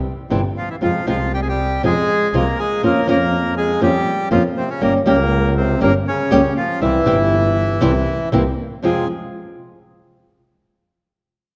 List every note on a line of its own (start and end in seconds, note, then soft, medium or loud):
0.30 0.52 G1 medium
0.30 0.40 C3 medium
0.30 0.40 E3 medium
0.30 0.40 G3 medium
0.30 0.40 C4 medium
0.30 0.40 E4 medium
0.57 0.69 F3 medium
0.57 0.69 F4 medium
0.70 0.76 E3 medium
0.70 0.76 E4 medium
0.81 1.03 F2 medium
0.81 0.99 C3 medium
0.81 0.99 F3 medium
0.81 1.06 F3 medium
0.81 0.99 G#3 medium
0.81 0.99 C4 medium
0.81 1.06 F4 medium
0.81 0.99 F4 medium
1.07 1.80 C2 medium
1.07 1.16 C3 medium
1.07 1.17 F3 medium
1.07 1.32 F3 medium
1.07 1.17 G#3 medium
1.07 1.17 C4 medium
1.07 1.17 F4 medium
1.07 1.32 F4 medium
1.34 1.41 G3 medium
1.34 1.40 G4 medium
1.42 1.48 G#4 medium
1.49 1.82 G3 medium
1.49 1.82 G4 medium
1.83 2.05 F2 medium
1.83 1.92 C3 medium
1.83 1.93 F3 medium
1.83 1.93 G#3 medium
1.83 2.31 G#3 medium
1.83 1.93 C4 medium
1.83 1.93 F4 medium
1.83 2.36 G#4 loud
2.33 2.54 C2 medium
2.33 2.43 C3 medium
2.33 2.43 F3 medium
2.33 2.43 G#3 medium
2.33 2.58 A#3 medium
2.33 2.43 C4 medium
2.33 2.43 F4 medium
2.33 2.60 A#4 medium
2.59 2.82 G#3 medium
2.59 2.82 G#4 medium
2.83 3.04 F2 medium
2.83 3.00 F3 medium
2.83 3.00 A#3 medium
2.83 3.07 A#3 medium
2.83 3.00 C#4 medium
2.83 3.00 F4 medium
2.83 3.07 A#4 medium
3.07 3.78 F2 medium
3.07 3.16 F3 medium
3.07 3.17 A#3 medium
3.07 3.55 A#3 medium
3.07 3.17 C#4 medium
3.07 3.17 F4 loud
3.07 3.54 A#4 medium
3.57 3.81 G#3 medium
3.57 3.80 G#4 medium
3.80 4.02 F2 medium
3.80 3.90 F3 medium
3.80 4.29 G3 medium
3.80 3.91 A#3 medium
3.80 3.91 C#4 medium
3.80 3.91 F4 medium
3.80 4.29 G4 loud
4.31 4.52 F2 loud
4.31 4.40 F3 medium
4.31 4.44 F3 medium
4.31 4.40 A#3 medium
4.31 4.41 C#4 medium
4.31 4.41 F4 medium
4.31 4.43 F4 medium
4.57 4.69 C3 medium
4.57 4.70 C4 medium
4.70 4.82 C#3 medium
4.70 4.82 C#4 medium
4.81 5.02 G1 medium
4.81 4.98 G3 medium
4.81 4.93 A#3 medium
4.81 4.99 A#3 medium
4.81 4.99 C#4 medium
4.81 4.99 G4 medium
4.81 4.94 A#4 medium
5.05 5.77 C#2 loud
5.05 5.15 G3 medium
5.05 5.15 A#3 medium
5.05 5.53 A#3 loud
5.05 5.16 C#4 medium
5.05 5.16 G4 loud
5.05 5.54 A#4 medium
5.57 5.81 C3 medium
5.57 5.80 C4 medium
5.81 6.02 G1 loud
5.81 5.90 G3 medium
5.81 5.90 A#3 medium
5.81 5.93 A#3 medium
5.81 5.90 C#4 medium
5.81 5.90 G4 loud
5.81 5.94 A#4 medium
6.07 6.54 C#3 medium
6.07 6.53 C#4 medium
6.31 6.52 C#2 medium
6.31 6.40 G3 medium
6.31 6.40 A#3 loud
6.31 6.40 C#4 loud
6.31 6.40 G4 loud
6.57 6.81 F3 medium
6.57 6.80 F4 medium
6.81 7.02 C2 medium
6.81 6.98 C3 medium
6.81 6.98 E3 medium
6.81 8.29 E3 medium
6.81 6.98 G3 medium
6.81 6.98 C4 medium
6.81 8.29 E4 medium
6.81 6.99 E4 medium
7.06 7.78 G1 loud
7.06 7.15 C3 medium
7.06 7.15 E3 loud
7.06 7.15 G3 medium
7.06 7.15 C4 loud
7.06 7.15 E4 loud
7.81 8.03 C2 loud
7.81 7.90 C3 loud
7.81 7.91 E3 loud
7.81 7.91 G3 medium
7.81 7.91 C4 loud
7.81 7.91 E4 loud
8.32 8.54 C2 loud
8.32 8.42 C3 medium
8.32 8.42 E3 medium
8.32 8.42 A#3 loud
8.32 8.42 C4 loud
8.32 8.42 E4 loud
8.83 9.03 F2 medium
8.83 9.05 F2 medium
8.83 9.04 C3 medium
8.83 9.04 F3 medium
8.83 9.04 G#3 medium
8.83 9.04 C4 medium
8.83 9.04 F4 medium
8.83 9.08 G#4 medium